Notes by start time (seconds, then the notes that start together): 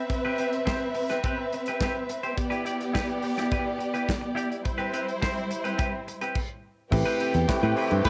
Already playing: C4 B4 E5
0.10 muted clean electric guitar stroke, kick, closed hi-hat
0.25 C4 G4 B4
0.38 C4 G4 B4, closed hi-hat
0.52 muted clean electric guitar stroke, closed hi-hat
0.66 C4 G4 C5, kick, snare, clap
0.80 muted clean electric guitar stroke
0.94 muted clean electric guitar stroke, open hi-hat
1.09 C4 G4 B4, snare, closed hi-hat
1.24 C4 G4 B4, kick, closed hi-hat
1.40 muted clean electric guitar stroke
1.52 muted clean electric guitar stroke, closed hi-hat
1.66 C4 G4 B4, closed hi-hat
1.81 C4 G4 B4, kick, snare, clap
1.97 muted clean electric guitar stroke
2.09 muted clean electric guitar stroke, closed hi-hat
2.23 C4 G4 C5, closed hi-hat
2.37 B3 G4 D5, muted clean electric guitar stroke, kick, closed hi-hat
2.50 E4 G4 B4, closed hi-hat
2.65 E4 G4 D5, closed hi-hat
2.80 muted clean electric guitar stroke, closed hi-hat
2.93 E4 G4 B4, kick, snare, clap
3.09 muted clean electric guitar stroke, closed hi-hat
3.22 muted clean electric guitar stroke, open hi-hat
3.37 E4 G4 D5, snare, closed hi-hat
3.51 E4 G4 B4, kick, closed hi-hat
3.66 muted clean electric guitar stroke
3.78 muted clean electric guitar stroke, closed hi-hat
3.94 E4 G4 B4, closed hi-hat
4.09 kick, snare, clap
4.21 muted clean electric guitar stroke
4.35 E4 G4 D5, closed hi-hat
4.50 muted clean electric guitar stroke, closed hi-hat
4.64 G3 E4 C5, muted clean electric guitar stroke, kick, closed hi-hat
4.78 C4 G4 B4, closed hi-hat
4.93 C4 G4 B4, closed hi-hat
5.07 muted clean electric guitar stroke, closed hi-hat
5.22 C4 G4 C5, kick, snare, clap
5.36 muted clean electric guitar stroke, closed hi-hat
5.50 muted clean electric guitar stroke, closed hi-hat
5.64 C4 G4 B4, closed hi-hat
5.78 C4 G4 B4, kick, closed hi-hat
5.93 muted clean electric guitar stroke
6.07 muted clean electric guitar stroke, closed hi-hat
6.21 C4 G4 B4, closed hi-hat
6.35 kick, crash
6.91 A1 C3 A3 C4 E4 G4 B4 G5, muted clean electric guitar stroke, kick, crash
7.06 C4 G4 B4, closed hi-hat
7.20 C4 G4 B4, closed hi-hat
7.34 E2, muted clean electric guitar stroke, closed hi-hat
7.48 A3 C4 E4 G4 B4, muted clean electric guitar stroke, kick, snare, clap
7.63 A2 C4 G4 B4, closed hi-hat
7.75 A3 C4 E4 G4 B4, open hi-hat
7.90 G2 A3 C4 E4 G4 B4, muted clean electric guitar stroke, closed hi-hat
8.05 A2 E4 G4 B4, kick, closed hi-hat